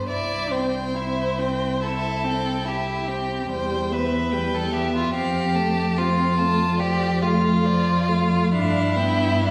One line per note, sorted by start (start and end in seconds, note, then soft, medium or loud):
0.08 3.47 C2 soft
0.08 0.54 E4 soft
0.08 0.53 D5 medium
0.08 0.54 E5 soft
0.51 0.96 C4 soft
0.51 1.84 C5 medium
0.51 0.98 G5 soft
0.94 1.40 E4 soft
0.94 1.41 E5 soft
1.39 1.81 C4 soft
1.39 1.81 G5 soft
1.82 2.26 E4 soft
1.82 2.69 A4 medium
1.82 2.25 E5 soft
2.24 2.67 C4 soft
2.24 2.67 G5 soft
2.65 3.10 E4 soft
2.65 3.51 G4 soft
2.65 3.10 E5 soft
3.08 3.49 C4 soft
3.08 3.49 G5 soft
3.49 5.11 E2 soft
3.49 3.93 G3 soft
3.49 3.95 C5 medium
3.49 3.93 G5 soft
3.91 4.34 B3 soft
3.91 4.56 B4 medium
3.91 4.33 E5 soft
4.32 4.74 G3 soft
4.32 4.73 G5 soft
4.55 4.75 A4 medium
4.72 5.14 B3 soft
4.72 4.93 G4 medium
4.72 5.13 E5 soft
4.95 5.14 F4 medium
5.14 8.54 F2 soft
5.14 5.57 C4 soft
5.14 5.99 G4 medium
5.14 5.57 F5 soft
5.55 5.99 A3 soft
5.55 5.98 A5 soft
5.97 6.41 C4 soft
5.97 6.81 F4 medium
5.97 6.40 F5 soft
6.38 6.80 A3 soft
6.38 6.78 A5 soft
6.79 7.24 F3 soft
6.79 7.24 G4 medium
6.79 7.23 D5 soft
7.22 7.67 A3 soft
7.22 8.54 F4 medium
7.22 7.67 F5 soft
7.65 8.10 F3 medium
7.65 8.10 D5 soft
8.08 8.53 A3 soft
8.08 8.52 F5 soft
8.52 9.51 G2 medium
8.52 8.98 D4 soft
8.52 9.51 E4 medium
8.52 8.98 F5 soft
8.96 9.44 B3 soft
8.96 9.42 G5 soft
9.41 9.51 D4 soft
9.41 9.51 F5 soft